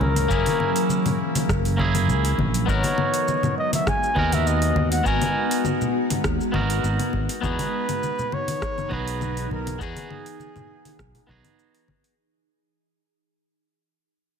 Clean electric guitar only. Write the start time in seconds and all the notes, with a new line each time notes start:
Already playing: A#3 C#4 E4 G#4
0.28 A#3 C#4 E4 G#4
1.77 A#3 C#4 E4 G#4
2.66 B3 D#4 F#4 A#4
4.15 B3 D#4 F#4 A#4
5.04 B3 D#4 F#4 A#4
6.52 B3 D#4 F#4 A#4
7.41 B3 D#4 F#4 G#4
8.89 B3 D#4 F#4 G#4
9.79 B3 D#4 F#4 G#4
11.27 B3 D#4 F#4 G#4